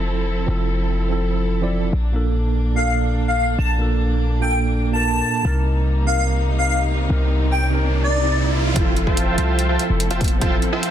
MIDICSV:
0, 0, Header, 1, 8, 480
1, 0, Start_track
1, 0, Key_signature, -1, "major"
1, 0, Tempo, 413793
1, 561, Time_signature, 4, 2, 24, 8
1, 12651, End_track
2, 0, Start_track
2, 0, Title_t, "Digital synth lead"
2, 0, Program_c, 0, 84
2, 3200, Note_on_c, 0, 77, 85
2, 3279, Note_off_c, 0, 77, 0
2, 3320, Note_on_c, 0, 77, 70
2, 3398, Note_off_c, 0, 77, 0
2, 3803, Note_on_c, 0, 77, 80
2, 3879, Note_off_c, 0, 77, 0
2, 3922, Note_on_c, 0, 77, 76
2, 3999, Note_off_c, 0, 77, 0
2, 4158, Note_on_c, 0, 81, 87
2, 4303, Note_off_c, 0, 81, 0
2, 5122, Note_on_c, 0, 79, 89
2, 5265, Note_off_c, 0, 79, 0
2, 5722, Note_on_c, 0, 81, 86
2, 6370, Note_off_c, 0, 81, 0
2, 7037, Note_on_c, 0, 77, 86
2, 7117, Note_off_c, 0, 77, 0
2, 7160, Note_on_c, 0, 77, 70
2, 7238, Note_off_c, 0, 77, 0
2, 7638, Note_on_c, 0, 77, 82
2, 7717, Note_off_c, 0, 77, 0
2, 7760, Note_on_c, 0, 77, 75
2, 7838, Note_off_c, 0, 77, 0
2, 8718, Note_on_c, 0, 79, 90
2, 8863, Note_off_c, 0, 79, 0
2, 9322, Note_on_c, 0, 74, 92
2, 9802, Note_off_c, 0, 74, 0
2, 12651, End_track
3, 0, Start_track
3, 0, Title_t, "Supersaw synth"
3, 0, Program_c, 1, 81
3, 10158, Note_on_c, 1, 65, 88
3, 10159, Note_on_c, 1, 72, 84
3, 10159, Note_on_c, 1, 76, 79
3, 10159, Note_on_c, 1, 79, 84
3, 10160, Note_on_c, 1, 81, 98
3, 10318, Note_off_c, 1, 65, 0
3, 10318, Note_off_c, 1, 72, 0
3, 10318, Note_off_c, 1, 76, 0
3, 10318, Note_off_c, 1, 79, 0
3, 10319, Note_off_c, 1, 81, 0
3, 10520, Note_on_c, 1, 65, 73
3, 10520, Note_on_c, 1, 72, 67
3, 10520, Note_on_c, 1, 81, 83
3, 10521, Note_on_c, 1, 76, 65
3, 10521, Note_on_c, 1, 79, 67
3, 10852, Note_off_c, 1, 65, 0
3, 10852, Note_off_c, 1, 72, 0
3, 10852, Note_off_c, 1, 76, 0
3, 10852, Note_off_c, 1, 79, 0
3, 10852, Note_off_c, 1, 81, 0
3, 10881, Note_on_c, 1, 81, 101
3, 10882, Note_on_c, 1, 65, 91
3, 10882, Note_on_c, 1, 72, 82
3, 10882, Note_on_c, 1, 76, 83
3, 10882, Note_on_c, 1, 79, 81
3, 11213, Note_off_c, 1, 81, 0
3, 11214, Note_off_c, 1, 65, 0
3, 11214, Note_off_c, 1, 72, 0
3, 11214, Note_off_c, 1, 76, 0
3, 11214, Note_off_c, 1, 79, 0
3, 11242, Note_on_c, 1, 65, 94
3, 11242, Note_on_c, 1, 72, 85
3, 11242, Note_on_c, 1, 76, 88
3, 11242, Note_on_c, 1, 81, 102
3, 11243, Note_on_c, 1, 79, 86
3, 11399, Note_off_c, 1, 65, 0
3, 11399, Note_off_c, 1, 72, 0
3, 11399, Note_off_c, 1, 76, 0
3, 11399, Note_off_c, 1, 79, 0
3, 11399, Note_off_c, 1, 81, 0
3, 11723, Note_on_c, 1, 72, 87
3, 11723, Note_on_c, 1, 79, 88
3, 11723, Note_on_c, 1, 81, 105
3, 11724, Note_on_c, 1, 65, 98
3, 11724, Note_on_c, 1, 76, 86
3, 11879, Note_off_c, 1, 72, 0
3, 11879, Note_off_c, 1, 79, 0
3, 11879, Note_off_c, 1, 81, 0
3, 11880, Note_off_c, 1, 65, 0
3, 11880, Note_off_c, 1, 76, 0
3, 12081, Note_on_c, 1, 65, 90
3, 12081, Note_on_c, 1, 72, 82
3, 12081, Note_on_c, 1, 81, 102
3, 12082, Note_on_c, 1, 76, 82
3, 12082, Note_on_c, 1, 79, 82
3, 12239, Note_off_c, 1, 65, 0
3, 12239, Note_off_c, 1, 72, 0
3, 12239, Note_off_c, 1, 81, 0
3, 12240, Note_off_c, 1, 76, 0
3, 12240, Note_off_c, 1, 79, 0
3, 12442, Note_on_c, 1, 65, 75
3, 12442, Note_on_c, 1, 72, 65
3, 12442, Note_on_c, 1, 76, 67
3, 12442, Note_on_c, 1, 81, 80
3, 12443, Note_on_c, 1, 79, 68
3, 12651, Note_off_c, 1, 65, 0
3, 12651, Note_off_c, 1, 72, 0
3, 12651, Note_off_c, 1, 76, 0
3, 12651, Note_off_c, 1, 79, 0
3, 12651, Note_off_c, 1, 81, 0
3, 12651, End_track
4, 0, Start_track
4, 0, Title_t, "Tine electric piano"
4, 0, Program_c, 2, 4
4, 0, Control_c, 2, 64, 127
4, 0, Note_on_c, 2, 53, 69
4, 0, Note_on_c, 2, 60, 62
4, 0, Note_on_c, 2, 64, 63
4, 0, Note_on_c, 2, 69, 75
4, 0, Note_on_c, 2, 72, 80
4, 521, Note_off_c, 2, 53, 0
4, 529, Note_off_c, 2, 60, 0
4, 537, Note_off_c, 2, 64, 0
4, 539, Note_on_c, 2, 53, 83
4, 545, Note_off_c, 2, 69, 0
4, 554, Note_on_c, 2, 60, 76
4, 569, Note_on_c, 2, 64, 78
4, 584, Note_on_c, 2, 69, 94
4, 1242, Note_off_c, 2, 53, 0
4, 1249, Note_off_c, 2, 60, 0
4, 1257, Note_off_c, 2, 64, 0
4, 1258, Note_on_c, 2, 53, 77
4, 1264, Note_off_c, 2, 69, 0
4, 1273, Note_on_c, 2, 60, 66
4, 1289, Note_on_c, 2, 64, 68
4, 1304, Note_on_c, 2, 69, 82
4, 1842, Note_off_c, 2, 53, 0
4, 1850, Note_off_c, 2, 60, 0
4, 1857, Note_off_c, 2, 64, 0
4, 1865, Note_off_c, 2, 69, 0
4, 1873, Note_on_c, 2, 53, 85
4, 1880, Note_on_c, 2, 60, 75
4, 1888, Note_on_c, 2, 64, 78
4, 1895, Note_on_c, 2, 74, 92
4, 2223, Note_off_c, 2, 53, 0
4, 2226, Note_off_c, 2, 60, 0
4, 2230, Note_off_c, 2, 64, 0
4, 2234, Note_off_c, 2, 74, 0
4, 2255, Control_c, 2, 64, 0
4, 2267, Note_off_c, 2, 72, 0
4, 2458, Note_on_c, 2, 46, 85
4, 2472, Note_on_c, 2, 58, 81
4, 2476, Control_c, 2, 64, 127
4, 2488, Note_on_c, 2, 62, 82
4, 2504, Note_on_c, 2, 69, 97
4, 3161, Note_off_c, 2, 46, 0
4, 3168, Note_off_c, 2, 58, 0
4, 3176, Note_off_c, 2, 62, 0
4, 3178, Note_on_c, 2, 46, 69
4, 3184, Note_off_c, 2, 69, 0
4, 3194, Note_on_c, 2, 58, 61
4, 3210, Note_on_c, 2, 62, 60
4, 3225, Note_on_c, 2, 69, 77
4, 4361, Note_off_c, 2, 46, 0
4, 4369, Note_off_c, 2, 58, 0
4, 4377, Note_off_c, 2, 62, 0
4, 4378, Note_on_c, 2, 46, 84
4, 4385, Note_off_c, 2, 69, 0
4, 4394, Note_on_c, 2, 58, 81
4, 4409, Note_on_c, 2, 62, 77
4, 4424, Note_on_c, 2, 69, 96
4, 5081, Note_off_c, 2, 46, 0
4, 5089, Note_off_c, 2, 58, 0
4, 5097, Note_off_c, 2, 62, 0
4, 5101, Note_on_c, 2, 46, 75
4, 5104, Note_off_c, 2, 69, 0
4, 5116, Note_on_c, 2, 58, 70
4, 5132, Note_on_c, 2, 62, 67
4, 5146, Note_on_c, 2, 69, 82
4, 5683, Note_off_c, 2, 46, 0
4, 5691, Note_off_c, 2, 58, 0
4, 5699, Note_off_c, 2, 62, 0
4, 5700, Note_on_c, 2, 46, 70
4, 5706, Note_off_c, 2, 69, 0
4, 5716, Note_on_c, 2, 58, 66
4, 5733, Note_on_c, 2, 62, 66
4, 5748, Note_on_c, 2, 70, 78
4, 6282, Note_off_c, 2, 46, 0
4, 6290, Note_off_c, 2, 58, 0
4, 6298, Note_off_c, 2, 62, 0
4, 6298, Note_on_c, 2, 48, 86
4, 6306, Note_off_c, 2, 70, 0
4, 6314, Note_on_c, 2, 60, 81
4, 6328, Note_on_c, 2, 63, 78
4, 6335, Control_c, 2, 64, 0
4, 6344, Note_on_c, 2, 70, 99
4, 6507, Control_c, 2, 64, 127
4, 7001, Note_off_c, 2, 48, 0
4, 7009, Note_off_c, 2, 60, 0
4, 7016, Note_off_c, 2, 63, 0
4, 7017, Note_on_c, 2, 48, 72
4, 7024, Note_off_c, 2, 70, 0
4, 7033, Note_on_c, 2, 60, 66
4, 7047, Note_on_c, 2, 63, 65
4, 7063, Note_on_c, 2, 70, 79
4, 8201, Note_off_c, 2, 48, 0
4, 8209, Note_off_c, 2, 60, 0
4, 8216, Note_off_c, 2, 63, 0
4, 8217, Note_on_c, 2, 48, 89
4, 8224, Note_off_c, 2, 70, 0
4, 8231, Note_on_c, 2, 60, 79
4, 8247, Note_on_c, 2, 63, 80
4, 8263, Note_on_c, 2, 70, 97
4, 8921, Note_off_c, 2, 48, 0
4, 8928, Note_off_c, 2, 60, 0
4, 8936, Note_off_c, 2, 63, 0
4, 8937, Note_on_c, 2, 48, 76
4, 8944, Note_off_c, 2, 70, 0
4, 8951, Note_on_c, 2, 60, 72
4, 8967, Note_on_c, 2, 63, 70
4, 8984, Note_on_c, 2, 70, 86
4, 9521, Note_off_c, 2, 48, 0
4, 9529, Note_off_c, 2, 60, 0
4, 9537, Note_off_c, 2, 63, 0
4, 9538, Note_on_c, 2, 48, 84
4, 9545, Note_off_c, 2, 70, 0
4, 9553, Note_on_c, 2, 60, 79
4, 9569, Note_on_c, 2, 63, 80
4, 9585, Note_on_c, 2, 74, 99
4, 10121, Note_off_c, 2, 48, 0
4, 10128, Note_off_c, 2, 60, 0
4, 10135, Note_on_c, 2, 53, 90
4, 10136, Note_off_c, 2, 63, 0
4, 10144, Note_off_c, 2, 74, 0
4, 10150, Note_on_c, 2, 60, 82
4, 10165, Note_on_c, 2, 64, 80
4, 10178, Control_c, 2, 64, 0
4, 10180, Note_on_c, 2, 69, 102
4, 10388, Control_c, 2, 64, 127
4, 10840, Note_off_c, 2, 53, 0
4, 10847, Note_off_c, 2, 60, 0
4, 10855, Note_off_c, 2, 64, 0
4, 10857, Note_on_c, 2, 53, 69
4, 10862, Note_off_c, 2, 69, 0
4, 10873, Note_on_c, 2, 60, 65
4, 10889, Note_on_c, 2, 64, 65
4, 10903, Note_on_c, 2, 69, 79
4, 12041, Note_off_c, 2, 53, 0
4, 12049, Note_off_c, 2, 60, 0
4, 12056, Note_on_c, 2, 53, 88
4, 12057, Note_off_c, 2, 64, 0
4, 12064, Note_off_c, 2, 69, 0
4, 12072, Note_on_c, 2, 60, 85
4, 12088, Note_on_c, 2, 64, 82
4, 12103, Note_on_c, 2, 69, 100
4, 12651, Note_off_c, 2, 53, 0
4, 12651, Note_off_c, 2, 60, 0
4, 12651, Note_off_c, 2, 64, 0
4, 12651, Note_off_c, 2, 69, 0
4, 12651, End_track
5, 0, Start_track
5, 0, Title_t, "String section"
5, 0, Program_c, 3, 48
5, 0, Note_on_c, 3, 53, 71
5, 0, Note_on_c, 3, 60, 65
5, 0, Note_on_c, 3, 64, 66
5, 0, Note_on_c, 3, 69, 76
5, 2196, Note_off_c, 3, 53, 0
5, 2196, Note_off_c, 3, 60, 0
5, 2196, Note_off_c, 3, 64, 0
5, 2196, Note_off_c, 3, 69, 0
5, 2238, Note_on_c, 3, 58, 67
5, 2241, Note_on_c, 3, 62, 80
5, 6280, Note_off_c, 3, 62, 0
5, 6318, Note_on_c, 3, 48, 73
5, 6318, Note_on_c, 3, 55, 68
5, 6319, Note_on_c, 3, 63, 85
5, 10113, Note_off_c, 3, 58, 0
5, 10121, Note_off_c, 3, 48, 0
5, 10121, Note_off_c, 3, 55, 0
5, 10122, Note_off_c, 3, 63, 0
5, 10159, Note_on_c, 3, 60, 68
5, 10159, Note_on_c, 3, 64, 71
5, 10159, Note_on_c, 3, 69, 85
5, 10160, Note_on_c, 3, 53, 73
5, 12651, Note_off_c, 3, 53, 0
5, 12651, Note_off_c, 3, 60, 0
5, 12651, Note_off_c, 3, 64, 0
5, 12651, Note_off_c, 3, 69, 0
5, 12651, End_track
6, 0, Start_track
6, 0, Title_t, "808-style bass"
6, 0, Program_c, 4, 38
6, 0, Note_on_c, 4, 29, 83
6, 538, Note_off_c, 4, 29, 0
6, 559, Note_on_c, 4, 29, 82
6, 2217, Note_off_c, 4, 29, 0
6, 2239, Note_on_c, 4, 34, 82
6, 4136, Note_off_c, 4, 34, 0
6, 4159, Note_on_c, 4, 34, 81
6, 6057, Note_off_c, 4, 34, 0
6, 6320, Note_on_c, 4, 36, 84
6, 8217, Note_off_c, 4, 36, 0
6, 8238, Note_on_c, 4, 36, 86
6, 10136, Note_off_c, 4, 36, 0
6, 10160, Note_on_c, 4, 29, 91
6, 10865, Note_off_c, 4, 29, 0
6, 10881, Note_on_c, 4, 36, 90
6, 11346, Note_off_c, 4, 36, 0
6, 11481, Note_on_c, 4, 29, 88
6, 12306, Note_off_c, 4, 29, 0
6, 12651, End_track
7, 0, Start_track
7, 0, Title_t, "Riser"
7, 0, Program_c, 5, 103
7, 6322, Note_on_c, 5, 60, 69
7, 10161, Note_off_c, 5, 60, 0
7, 10161, Note_on_c, 5, 60, 73
7, 12651, Note_off_c, 5, 60, 0
7, 12651, End_track
8, 0, Start_track
8, 0, Title_t, "Drums"
8, 10160, Note_on_c, 9, 36, 109
8, 10160, Note_on_c, 9, 42, 77
8, 10276, Note_off_c, 9, 36, 0
8, 10276, Note_off_c, 9, 42, 0
8, 10400, Note_on_c, 9, 42, 62
8, 10516, Note_off_c, 9, 42, 0
8, 10521, Note_on_c, 9, 36, 54
8, 10637, Note_off_c, 9, 36, 0
8, 10639, Note_on_c, 9, 42, 72
8, 10755, Note_off_c, 9, 42, 0
8, 10881, Note_on_c, 9, 42, 64
8, 10997, Note_off_c, 9, 42, 0
8, 11121, Note_on_c, 9, 42, 73
8, 11237, Note_off_c, 9, 42, 0
8, 11362, Note_on_c, 9, 42, 62
8, 11478, Note_off_c, 9, 42, 0
8, 11601, Note_on_c, 9, 42, 74
8, 11717, Note_off_c, 9, 42, 0
8, 11723, Note_on_c, 9, 42, 61
8, 11839, Note_off_c, 9, 42, 0
8, 11842, Note_on_c, 9, 36, 96
8, 11842, Note_on_c, 9, 42, 46
8, 11882, Note_off_c, 9, 42, 0
8, 11882, Note_on_c, 9, 42, 61
8, 11922, Note_off_c, 9, 42, 0
8, 11922, Note_on_c, 9, 42, 75
8, 11958, Note_off_c, 9, 36, 0
8, 12038, Note_off_c, 9, 42, 0
8, 12081, Note_on_c, 9, 42, 77
8, 12082, Note_on_c, 9, 36, 117
8, 12197, Note_off_c, 9, 42, 0
8, 12198, Note_off_c, 9, 36, 0
8, 12322, Note_on_c, 9, 42, 62
8, 12438, Note_off_c, 9, 42, 0
8, 12562, Note_on_c, 9, 42, 75
8, 12651, Note_off_c, 9, 42, 0
8, 12651, End_track
0, 0, End_of_file